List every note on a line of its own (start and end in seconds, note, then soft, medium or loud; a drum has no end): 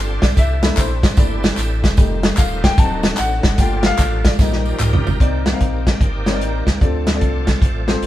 0.00 0.19 G1 loud
0.00 1.95 D3 medium
0.00 1.95 G3 medium
0.00 3.56 C4 medium
0.00 0.34 F4 medium
0.00 2.75 A4 medium
0.22 0.35 B1 medium
0.22 0.27 D5 medium
0.22 kick medium
0.22 snare loud
0.22 closed hi-hat medium
0.22 tambourine soft
0.37 0.71 C2 loud
0.37 1.97 E4 medium
0.37 0.79 E5 medium
0.37 kick medium
0.37 closed hi-hat medium
0.37 tambourine medium
0.62 0.86 A3 medium
0.62 0.86 A#3 medium
0.62 0.86 D4 medium
0.62 0.87 E4 medium
0.62 snare loud
0.62 closed hi-hat medium
0.62 tambourine medium
0.77 1.12 A#1 medium
0.77 1.19 C5 medium
0.77 kick medium
0.77 clap medium
0.77 closed hi-hat medium
0.77 tambourine medium
1.03 kick medium
1.03 snare loud
1.03 closed hi-hat medium
1.03 tambourine medium
1.17 1.52 G1 medium
1.17 1.41 A3 soft
1.17 1.41 A#3 soft
1.17 1.41 D4 soft
1.17 1.41 E4 medium
1.17 1.24 D5 medium
1.17 kick loud
1.17 closed hi-hat medium
1.17 tambourine medium
1.43 snare loud
1.43 closed hi-hat medium
1.43 tambourine medium
1.57 1.85 A1 loud
1.57 clap medium
1.57 closed hi-hat medium
1.57 tambourine medium
1.84 1.96 E1 medium
1.84 kick medium
1.84 snare medium
1.84 closed hi-hat medium
1.84 tambourine medium
1.97 2.32 F1 loud
1.97 2.78 D#3 medium
1.97 2.74 G3 medium
1.97 2.77 G3 medium
1.97 2.74 A3 soft
1.97 2.75 D#4 medium
1.97 2.78 F4 medium
1.97 kick loud
1.97 closed hi-hat medium
1.97 tambourine medium
2.23 snare loud
2.23 closed hi-hat medium
2.23 tambourine soft
2.37 2.72 D#1 medium
2.37 2.65 F5 medium
2.37 kick loud
2.37 clap medium
2.37 closed hi-hat medium
2.37 tambourine medium
2.64 2.79 G5 loud
2.64 kick medium
2.64 snare loud
2.64 closed hi-hat medium
2.64 tambourine medium
2.77 3.12 D1 medium
2.77 4.37 D3 medium
2.77 3.58 F#3 medium
2.77 3.08 F#3 medium
2.77 3.08 C4 soft
2.77 3.58 D#4 medium
2.77 3.09 D#4 medium
2.77 4.37 A4 medium
2.77 3.20 A5 loud
2.77 kick loud
2.77 closed hi-hat medium
2.77 tambourine medium
3.03 snare loud
3.03 closed hi-hat medium
3.03 tambourine medium
3.17 3.41 A1 medium
3.17 3.60 F#5 loud
3.17 clap medium
3.17 closed hi-hat medium
3.17 tambourine medium
3.43 3.56 F#1 loud
3.43 kick medium
3.43 snare loud
3.43 closed hi-hat medium
3.43 tambourine soft
3.58 3.93 G1 loud
3.58 5.18 F3 medium
3.58 5.18 G3 medium
3.58 4.36 A3 soft
3.58 4.36 A#3 soft
3.58 4.38 F4 medium
3.58 4.36 F4 medium
3.58 3.75 G5 medium
3.58 kick loud
3.58 closed hi-hat medium
3.58 tambourine medium
3.76 3.85 G5 medium
3.83 4.27 F5 loud
3.83 snare loud
3.83 closed hi-hat medium
3.83 tambourine medium
3.98 4.33 A1 loud
3.98 kick medium
3.98 clap loud
3.98 closed hi-hat medium
3.98 tambourine medium
4.25 4.31 D5 medium
4.25 kick medium
4.25 snare loud
4.25 closed hi-hat medium
4.25 tambourine medium
4.39 4.74 A#1 loud
4.39 5.19 D#3 medium
4.39 4.70 G3 medium
4.39 4.70 A#3 medium
4.39 4.71 D#4 medium
4.39 5.19 G4 medium
4.39 5.19 A#4 medium
4.39 4.78 D#5 medium
4.39 kick loud
4.39 snare medium
4.39 tambourine medium
4.53 snare medium
4.65 tambourine medium
4.80 5.02 C2 medium
4.80 clap medium
4.80 mid tom medium
4.80 tambourine medium
4.93 floor tom loud
5.06 5.18 G1 medium
5.06 floor tom medium
5.06 tambourine soft
5.20 5.54 C2 loud
5.20 5.82 C3 medium
5.20 6.80 D#3 medium
5.20 6.80 A#3 soft
5.20 5.44 C4 medium
5.20 8.06 C4 soft
5.20 5.44 D#4 medium
5.20 6.80 G4 medium
5.20 5.44 A#4 medium
5.20 8.06 D5 medium
5.20 5.45 D5 medium
5.20 kick medium
5.20 closed hi-hat medium
5.46 snare loud
5.46 closed hi-hat medium
5.52 5.95 C4 medium
5.52 5.96 D#4 medium
5.52 5.96 A#4 medium
5.52 5.96 F5 medium
5.60 5.95 A#1 medium
5.60 kick medium
5.60 closed hi-hat medium
5.87 kick medium
5.87 snare medium
5.87 closed hi-hat medium
6.01 6.42 G1 medium
6.01 kick loud
6.01 closed hi-hat medium
6.26 6.63 C4 medium
6.26 6.63 D#4 medium
6.26 6.64 A#4 medium
6.26 6.31 C#5 medium
6.26 snare medium
6.26 closed hi-hat medium
6.33 6.66 D5 medium
6.41 6.63 A1 medium
6.41 closed hi-hat medium
6.67 6.79 C#2 medium
6.67 kick medium
6.67 snare medium
6.67 closed hi-hat medium
6.81 7.23 D2 loud
6.81 7.44 D3 medium
6.81 8.06 F3 medium
6.81 8.06 A3 soft
6.81 7.05 C4 medium
6.81 7.05 F4 medium
6.81 7.05 A4 medium
6.81 8.06 A4 medium
6.81 7.05 D5 medium
6.81 kick loud
6.81 closed hi-hat medium
7.07 snare loud
7.07 closed hi-hat medium
7.14 7.57 C4 medium
7.14 7.57 F4 medium
7.14 7.57 A4 medium
7.14 7.58 D5 medium
7.21 7.56 C2 medium
7.21 kick medium
7.21 closed hi-hat medium
7.47 kick medium
7.47 snare medium
7.47 closed hi-hat medium
7.62 7.96 A1 medium
7.62 kick loud
7.62 closed hi-hat medium
7.87 8.06 C4 medium
7.87 8.06 F4 medium
7.87 8.06 A4 medium
7.87 8.06 C5 medium
7.87 snare medium
7.87 closed hi-hat medium
8.02 8.06 G1 medium
8.02 closed hi-hat medium